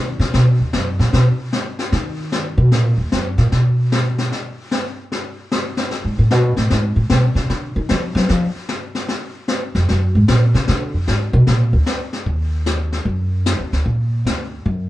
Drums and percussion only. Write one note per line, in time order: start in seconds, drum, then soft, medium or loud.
0.21 snare soft
0.34 brush sweep medium
0.34 snare soft
0.73 snare medium
1.00 snare soft
1.13 brush sweep medium
1.13 snare soft
1.53 snare medium
1.79 snare soft
1.92 brush sweep medium
1.92 snare soft
2.32 snare medium
2.72 brush sweep soft
2.72 snare soft
3.12 snare medium
3.38 snare soft
3.52 brush sweep soft
3.52 snare soft
3.92 snare medium
4.18 snare soft
4.32 brush sweep soft
4.32 snare soft
4.71 snare medium
5.12 brush sweep soft
5.12 snare soft
5.52 snare medium
5.77 snare soft
5.91 brush sweep soft
5.91 snare soft
6.31 snare medium
6.57 snare soft
6.70 brush sweep soft
6.70 snare soft
7.10 snare medium
7.36 snare soft
7.50 brush sweep medium
7.50 snare soft
7.89 snare medium
8.16 snare soft
8.28 brush sweep medium
8.28 snare soft
8.69 snare medium
8.95 snare soft
9.08 brush sweep soft
9.08 snare soft
9.48 snare medium
9.75 snare soft
9.89 brush sweep soft
9.89 snare soft
10.28 snare medium
10.55 snare soft
10.68 brush sweep medium
10.68 snare soft
11.08 snare medium
11.47 brush sweep medium
11.47 snare soft
11.86 snare medium
12.13 snare soft
12.26 brush sweep soft
12.26 kick soft
12.66 snare medium
12.66 hi-hat pedal medium
12.92 snare soft
13.06 brush sweep soft
13.06 kick soft
13.46 snare medium
13.46 hi-hat pedal medium
13.73 snare soft
13.86 brush sweep soft
13.86 kick soft
14.26 snare medium
14.26 hi-hat pedal soft
14.66 brush sweep soft
14.66 kick soft